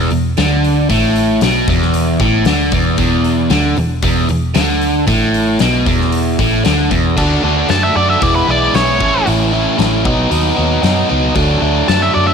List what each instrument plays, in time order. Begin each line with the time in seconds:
0.10 picked electric bass E1, overdriven electric guitar E2, open hi-hat
0.37 picked electric bass D2, overdriven electric guitar D3, snare, open hi-hat
0.64 open hi-hat
0.89 picked electric bass A1, overdriven electric guitar A2, kick, open hi-hat
1.16 open hi-hat
1.41 picked electric bass B1, overdriven electric guitar B2, snare, open hi-hat
1.68 picked electric bass E1, overdriven electric guitar E2, kick, open hi-hat
1.82 snare
1.94 open hi-hat
2.20 picked electric bass A1, overdriven electric guitar A2, kick, open hi-hat
2.45 picked electric bass D2, overdriven electric guitar D3, snare, open hi-hat
2.71 picked electric bass E1, overdriven electric guitar E2, kick, open hi-hat
2.98 picked electric bass E1, overdriven electric guitar E2, kick, open hi-hat
3.24 open hi-hat
3.50 picked electric bass D2, overdriven electric guitar D3, snare, open hi-hat
3.76 picked electric bass E1, overdriven electric guitar E2, open hi-hat
4.02 picked electric bass E1, overdriven electric guitar E2, kick, open hi-hat
4.29 picked electric bass E1, overdriven electric guitar E2, open hi-hat
4.55 picked electric bass D2, overdriven electric guitar D3, snare, open hi-hat
4.82 open hi-hat
5.07 picked electric bass A1, overdriven electric guitar A2, kick, open hi-hat
5.34 open hi-hat
5.59 picked electric bass B1, overdriven electric guitar B2, snare, open hi-hat
5.86 picked electric bass E1, overdriven electric guitar E2, kick, open hi-hat
6.01 snare
6.12 open hi-hat
6.39 picked electric bass A1, overdriven electric guitar A2, kick, open hi-hat
6.65 picked electric bass D2, overdriven electric guitar D3, snare, open hi-hat
6.90 picked electric bass E1, overdriven electric guitar E2, kick, open hi-hat
7.17 picked electric bass D2, overdriven electric guitar D3 A3 D4 F#4 A4, kick, crash
7.43 picked electric bass D2, overdriven electric guitar D3 A3 D4 F#4 A4
7.69 picked electric bass F#2, overdriven electric guitar D3 A3 D4 F#4 A4, lead electric guitar A5, snare, open hi-hat
7.83 lead electric guitar E5
7.95 picked electric bass F#2, overdriven electric guitar D3 A3 D4 F#4 A4, lead electric guitar D5
8.10 lead electric guitar E5
8.21 picked electric bass E1, overdriven electric guitar E3 G#3 B3 E4, lead electric guitar D5, kick, open hi-hat
8.35 lead electric guitar B4
8.47 picked electric bass B1, overdriven electric guitar E3 G#3 B3 E4, lead electric guitar D5
8.74 picked electric bass B1, overdriven electric guitar E3 G#3 B3 E4, lead electric guitar C#5, snare, open hi-hat
8.99 picked electric bass A1, overdriven electric guitar A2 E3 A3 C#4 E4, kick
9.25 picked electric bass A1, overdriven electric guitar A2 E3 A3 C#4 E4, open hi-hat
9.52 overdriven electric guitar A2 E3 A3 C#4 E4
9.77 picked electric bass A1, overdriven electric guitar A2 E3 A3 C#4 E4, snare, open hi-hat
10.04 picked electric bass B1, overdriven electric guitar B2 F#3 B3 D#4, kick
10.30 picked electric bass D#2, overdriven electric guitar B2 F#3 B3 D#4, open hi-hat
10.56 picked electric bass D#2, overdriven electric guitar B2 F#3 B3 D#4
10.82 picked electric bass F#2, overdriven electric guitar B2 F#3 B3 D#4, snare, open hi-hat
11.09 picked electric bass C#2, overdriven electric guitar B2 F#3 B3 D#4
11.35 picked electric bass D2, overdriven electric guitar D3 F#3 A3 D4, kick, open hi-hat
11.61 picked electric bass D2, overdriven electric guitar D3 F#3 A3 D4
11.88 picked electric bass F#2, overdriven electric guitar D3 F#3 A3 D4, lead electric guitar A5, snare, open hi-hat
12.02 lead electric guitar E5
12.14 picked electric bass F#2, overdriven electric guitar D3 F#3 A3 D4, lead electric guitar D5
12.27 lead electric guitar E5